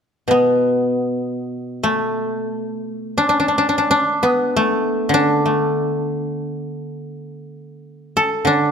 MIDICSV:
0, 0, Header, 1, 2, 480
1, 0, Start_track
1, 0, Tempo, 500000
1, 8366, End_track
2, 0, Start_track
2, 0, Title_t, "Guzheng"
2, 0, Program_c, 0, 107
2, 264, Note_on_c, 0, 47, 38
2, 295, Note_on_c, 0, 59, 48
2, 1761, Note_on_c, 0, 57, 52
2, 3049, Note_on_c, 0, 62, 59
2, 3155, Note_off_c, 0, 62, 0
2, 3159, Note_on_c, 0, 62, 45
2, 3256, Note_off_c, 0, 62, 0
2, 3260, Note_on_c, 0, 62, 49
2, 3270, Note_off_c, 0, 59, 0
2, 3339, Note_off_c, 0, 62, 0
2, 3343, Note_on_c, 0, 62, 43
2, 3433, Note_off_c, 0, 62, 0
2, 3437, Note_on_c, 0, 62, 55
2, 3538, Note_off_c, 0, 62, 0
2, 3541, Note_on_c, 0, 62, 46
2, 3624, Note_off_c, 0, 62, 0
2, 3628, Note_on_c, 0, 62, 49
2, 3747, Note_off_c, 0, 62, 0
2, 3751, Note_on_c, 0, 62, 73
2, 4008, Note_off_c, 0, 47, 0
2, 4059, Note_on_c, 0, 59, 60
2, 4378, Note_off_c, 0, 57, 0
2, 4382, Note_on_c, 0, 57, 60
2, 4888, Note_on_c, 0, 50, 47
2, 4930, Note_off_c, 0, 62, 0
2, 4933, Note_on_c, 0, 62, 67
2, 5233, Note_off_c, 0, 57, 0
2, 5237, Note_on_c, 0, 57, 34
2, 7034, Note_off_c, 0, 59, 0
2, 7621, Note_off_c, 0, 62, 0
2, 7839, Note_off_c, 0, 57, 0
2, 7840, Note_on_c, 0, 69, 73
2, 8098, Note_off_c, 0, 50, 0
2, 8109, Note_on_c, 0, 50, 55
2, 8131, Note_on_c, 0, 62, 59
2, 8366, Note_off_c, 0, 50, 0
2, 8366, Note_off_c, 0, 62, 0
2, 8366, Note_off_c, 0, 69, 0
2, 8366, End_track
0, 0, End_of_file